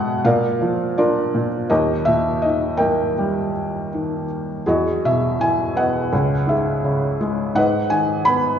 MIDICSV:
0, 0, Header, 1, 2, 480
1, 0, Start_track
1, 0, Tempo, 726392
1, 1120, Time_signature, 4, 2, 24, 8
1, 1602, Tempo, 742574
1, 3522, Tempo, 720288
1, 5651, End_track
2, 0, Start_track
2, 0, Title_t, "Felt piano"
2, 0, Program_c, 0, 0
2, 0, Control_c, 0, 64, 127
2, 0, Note_on_c, 0, 47, 58
2, 0, Note_on_c, 0, 56, 54
2, 0, Note_on_c, 0, 68, 57
2, 0, Note_on_c, 0, 71, 53
2, 0, Note_on_c, 0, 76, 77
2, 0, Note_on_c, 0, 78, 80
2, 137, Note_off_c, 0, 71, 0
2, 137, Note_off_c, 0, 78, 0
2, 138, Note_off_c, 0, 68, 0
2, 153, Note_off_c, 0, 47, 0
2, 156, Note_off_c, 0, 56, 0
2, 162, Note_on_c, 0, 77, 80
2, 163, Note_on_c, 0, 46, 61
2, 169, Note_on_c, 0, 70, 63
2, 170, Control_c, 0, 64, 0
2, 172, Note_off_c, 0, 76, 0
2, 176, Note_on_c, 0, 74, 62
2, 269, Control_c, 0, 64, 127
2, 407, Note_on_c, 0, 53, 53
2, 636, Note_off_c, 0, 74, 0
2, 643, Note_off_c, 0, 70, 0
2, 646, Note_on_c, 0, 74, 68
2, 648, Note_on_c, 0, 65, 59
2, 652, Note_on_c, 0, 62, 53
2, 653, Note_on_c, 0, 70, 59
2, 655, Note_off_c, 0, 77, 0
2, 880, Note_off_c, 0, 46, 0
2, 890, Note_on_c, 0, 46, 52
2, 978, Note_off_c, 0, 74, 0
2, 1098, Note_off_c, 0, 65, 0
2, 1100, Note_off_c, 0, 70, 0
2, 1102, Note_off_c, 0, 53, 0
2, 1112, Note_off_c, 0, 62, 0
2, 1118, Note_off_c, 0, 46, 0
2, 1120, Note_on_c, 0, 75, 77
2, 1122, Note_on_c, 0, 70, 62
2, 1125, Note_on_c, 0, 67, 56
2, 1129, Control_c, 0, 64, 0
2, 1129, Note_on_c, 0, 39, 67
2, 1265, Control_c, 0, 64, 127
2, 1356, Note_on_c, 0, 76, 81
2, 1368, Note_off_c, 0, 75, 0
2, 1370, Note_on_c, 0, 46, 41
2, 1598, Note_on_c, 0, 75, 78
2, 1607, Note_off_c, 0, 76, 0
2, 1622, Note_on_c, 0, 51, 48
2, 1820, Note_off_c, 0, 70, 0
2, 1824, Note_off_c, 0, 75, 0
2, 1828, Note_on_c, 0, 79, 76
2, 1830, Note_on_c, 0, 70, 52
2, 1834, Note_on_c, 0, 75, 52
2, 1841, Note_on_c, 0, 58, 47
2, 2057, Note_off_c, 0, 67, 0
2, 2093, Note_on_c, 0, 55, 52
2, 2301, Note_off_c, 0, 46, 0
2, 2549, Note_off_c, 0, 51, 0
2, 2581, Note_on_c, 0, 51, 43
2, 2775, Note_off_c, 0, 79, 0
2, 2776, Note_off_c, 0, 70, 0
2, 2778, Note_off_c, 0, 75, 0
2, 2782, Note_off_c, 0, 58, 0
2, 3025, Note_off_c, 0, 39, 0
2, 3027, Note_off_c, 0, 55, 0
2, 3041, Note_off_c, 0, 51, 0
2, 3049, Note_on_c, 0, 68, 50
2, 3052, Note_on_c, 0, 40, 56
2, 3054, Control_c, 0, 64, 0
2, 3054, Note_on_c, 0, 66, 51
2, 3061, Note_on_c, 0, 75, 67
2, 3167, Control_c, 0, 64, 127
2, 3299, Note_off_c, 0, 75, 0
2, 3300, Note_on_c, 0, 47, 44
2, 3301, Note_on_c, 0, 76, 75
2, 3524, Note_on_c, 0, 52, 46
2, 3532, Note_on_c, 0, 80, 90
2, 3537, Note_off_c, 0, 76, 0
2, 3758, Note_on_c, 0, 59, 47
2, 3771, Note_on_c, 0, 78, 77
2, 3777, Note_off_c, 0, 80, 0
2, 3779, Note_on_c, 0, 75, 53
2, 3981, Note_off_c, 0, 68, 0
2, 3983, Note_off_c, 0, 40, 0
2, 3984, Note_off_c, 0, 66, 0
2, 3993, Note_off_c, 0, 47, 0
2, 3993, Note_off_c, 0, 52, 0
2, 3996, Note_off_c, 0, 59, 0
2, 4010, Note_on_c, 0, 37, 68
2, 4014, Control_c, 0, 64, 0
2, 4139, Control_c, 0, 64, 127
2, 4236, Note_on_c, 0, 44, 49
2, 4251, Note_on_c, 0, 76, 62
2, 4260, Note_on_c, 0, 68, 44
2, 4266, Note_off_c, 0, 78, 0
2, 4487, Note_on_c, 0, 49, 50
2, 4707, Note_off_c, 0, 76, 0
2, 4713, Note_off_c, 0, 75, 0
2, 4729, Note_on_c, 0, 56, 51
2, 4943, Note_off_c, 0, 44, 0
2, 4946, Note_off_c, 0, 37, 0
2, 4950, Note_off_c, 0, 68, 0
2, 4954, Note_off_c, 0, 49, 0
2, 4959, Note_on_c, 0, 44, 64
2, 4962, Note_off_c, 0, 56, 0
2, 4962, Note_on_c, 0, 78, 88
2, 4973, Note_on_c, 0, 75, 59
2, 4975, Note_on_c, 0, 71, 60
2, 4980, Control_c, 0, 64, 0
2, 5098, Control_c, 0, 64, 127
2, 5191, Note_on_c, 0, 80, 90
2, 5192, Note_on_c, 0, 51, 50
2, 5210, Note_off_c, 0, 78, 0
2, 5425, Note_on_c, 0, 83, 97
2, 5442, Note_on_c, 0, 59, 49
2, 5443, Note_off_c, 0, 80, 0
2, 5651, Note_off_c, 0, 44, 0
2, 5651, Note_off_c, 0, 51, 0
2, 5651, Note_off_c, 0, 59, 0
2, 5651, Note_off_c, 0, 71, 0
2, 5651, Note_off_c, 0, 75, 0
2, 5651, Note_off_c, 0, 83, 0
2, 5651, End_track
0, 0, End_of_file